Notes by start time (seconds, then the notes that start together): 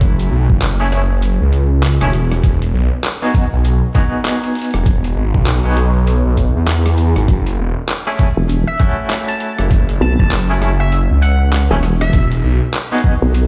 Already playing: F#1 A3 C#4 E4 F#4
0.01 kick, closed hi-hat
0.19 closed hi-hat
0.31 B1
0.50 F#1, kick
0.62 clap, closed hi-hat
0.80 A3 C#4 E4 G#4
0.92 cross-stick, closed hi-hat
1.22 closed hi-hat
1.41 C#2
1.53 closed hi-hat
1.83 clap, closed hi-hat
2.01 E1 A3 C#4 E4 G#4, cross-stick, closed hi-hat
2.13 closed hi-hat
2.32 cross-stick
2.44 E1, kick, closed hi-hat
2.62 closed hi-hat
2.74 B1
3.04 clap, closed hi-hat
3.22 B3 D#4 F#4 G#4
3.34 kick, closed hi-hat
3.53 B1
3.65 closed hi-hat
3.95 B3 D#4 F#4 G#4, kick, closed hi-hat
4.25 clap, closed hi-hat
4.43 closed hi-hat
4.55 closed hi-hat
4.58 closed hi-hat
4.62 closed hi-hat
4.65 closed hi-hat
4.71 E1, cross-stick, closed hi-hat
4.86 kick, closed hi-hat
5.04 closed hi-hat
5.16 G#1
5.34 B1, kick
5.46 clap, closed hi-hat
5.64 B1 B3 D#4 F#4 G#4
5.77 cross-stick, closed hi-hat
6.07 closed hi-hat
6.25 B1
6.37 kick, closed hi-hat
6.56 E2
6.67 clap, closed hi-hat
6.86 cross-stick, closed hi-hat
6.98 closed hi-hat
7.16 G#1, cross-stick
7.28 F#1, kick, closed hi-hat
7.46 closed hi-hat
7.59 E1
7.89 clap, closed hi-hat
8.07 A3 C#4 E4 G#4
8.19 kick, closed hi-hat
8.37 E1
8.49 closed hi-hat
8.67 E5
8.79 A3 C#4 E4 F#4, kick, closed hi-hat
9.10 clap, closed hi-hat
9.28 A5, closed hi-hat
9.40 A5, closed hi-hat
9.59 F#1, cross-stick
9.71 kick, closed hi-hat
9.89 closed hi-hat
10.01 B1 A5
10.19 F#1 A5, kick
10.31 clap, closed hi-hat
10.49 A3 C#4 E4 G#4
10.62 cross-stick, closed hi-hat
10.80 E5
10.92 closed hi-hat
11.10 C#2
11.22 F#5, closed hi-hat
11.53 clap, closed hi-hat
11.71 E1 A3 C#4 E4 G#4
11.83 cross-stick, closed hi-hat
12.01 E5, cross-stick
12.13 E1, kick, closed hi-hat
12.32 closed hi-hat
12.44 B1
12.74 clap, closed hi-hat
12.92 B3 D#4 F#4 G#4
12.98 closed hi-hat
13.04 kick
13.22 B1
13.34 closed hi-hat